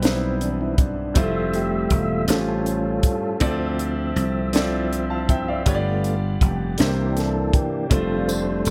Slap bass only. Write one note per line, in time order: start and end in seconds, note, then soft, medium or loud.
0.00 1.12 B1 medium
1.16 1.87 F1 medium
1.91 2.25 E1 medium
2.28 3.00 A1 medium
3.41 4.12 D2 medium
4.16 5.62 C2 medium
5.67 6.37 G1 medium
6.42 6.76 F1 medium
6.80 7.50 C2 medium
7.91 8.62 F1 medium
8.66 8.70 E1 medium